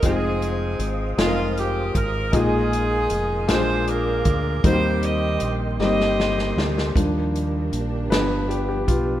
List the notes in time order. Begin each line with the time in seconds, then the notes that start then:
Already playing: F5 D#6
0.03 F1 G#3 C4 D#4 F4 G#4 C5, kick, closed hi-hat
0.42 closed hi-hat
0.79 G#1, closed hi-hat
1.17 F1 G#3 C4 D#4 F4 G#4, snare, closed hi-hat
1.26 A#4
1.57 G4, closed hi-hat
1.95 G#1 A#4, kick, closed hi-hat
2.32 A#1 A#2 G#3 A#3 D#4 F4 G4 G#4 A#4, kick, closed hi-hat
2.40 G#4
2.73 closed hi-hat
3.10 F1, closed hi-hat
3.47 A#1 A#2 G#3 A#3 D4 F4 G4 G#4 C5 D6, snare, closed hi-hat
3.55 G#4
3.87 D4 F4 A#4, closed hi-hat
4.25 D2, kick, closed hi-hat
4.63 D#2 D#3 G3 A#3 C4 D#4 F#4 G4 C5 D#5 G5 C6, kick, closed hi-hat
4.72 G4
5.03 D#5, closed hi-hat
5.40 A#1, closed hi-hat
5.79 G1 G3 A#3 C4 D#4 G4 C5 D#5, snare
6.00 snare
6.20 snare
6.38 snare
6.56 D2, snare
6.78 snare
6.95 D#2 D#3 F3 G3 A#3 D4 G4 A#4, kick, closed hi-hat
7.36 closed hi-hat
7.72 A#1, closed hi-hat
8.10 G1 F3 B3 D4 B4, snare, closed hi-hat
8.49 G4, closed hi-hat
8.69 G4
8.87 B1 F4, kick, closed hi-hat